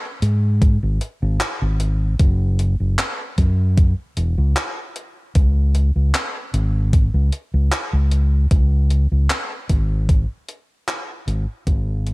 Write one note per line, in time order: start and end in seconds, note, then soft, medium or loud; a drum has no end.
0.22 0.77 G#2 medium
0.22 closed hi-hat medium
0.62 kick loud
0.62 closed hi-hat medium
0.83 0.98 G#1 medium
1.01 closed hi-hat medium
1.22 1.37 G#1 medium
1.40 clap loud
1.40 closed hi-hat medium
1.62 2.14 G#1 medium
1.80 closed hi-hat medium
2.19 2.74 F#1 loud
2.19 kick loud
2.19 closed hi-hat medium
2.59 closed hi-hat medium
2.80 2.95 F#1 medium
2.99 clap loud
2.99 closed hi-hat medium
3.38 3.92 F#2 loud
3.38 kick medium
3.38 closed hi-hat medium
3.78 kick loud
3.78 closed hi-hat medium
4.17 4.34 E1 medium
4.17 closed hi-hat medium
4.38 4.53 C#2 medium
4.56 clap loud
4.56 closed hi-hat medium
4.96 closed hi-hat medium
5.35 5.90 C#2 loud
5.35 kick loud
5.35 closed hi-hat medium
5.75 closed hi-hat medium
5.96 6.11 C#2 medium
6.14 clap loud
6.14 closed hi-hat medium
6.54 7.08 G#1 medium
6.54 closed hi-hat medium
6.93 kick loud
6.93 closed hi-hat medium
7.14 7.29 C#2 medium
7.32 closed hi-hat medium
7.54 7.69 C#2 loud
7.72 clap loud
7.72 closed hi-hat medium
7.93 8.46 C#2 medium
8.12 closed hi-hat medium
8.51 9.06 C#2 loud
8.51 kick loud
8.51 closed hi-hat medium
8.90 closed hi-hat medium
9.12 9.27 C#2 medium
9.30 clap loud
9.30 closed hi-hat medium
9.69 10.24 G#1 medium
9.69 kick medium
9.69 closed hi-hat medium
10.09 kick loud
10.09 closed hi-hat medium
10.48 closed hi-hat medium
10.88 clap loud
10.88 closed hi-hat medium
11.27 11.45 G#1 loud
11.27 closed hi-hat medium
11.67 12.13 G#1 loud
11.67 kick loud
11.67 closed hi-hat medium
12.07 closed hi-hat medium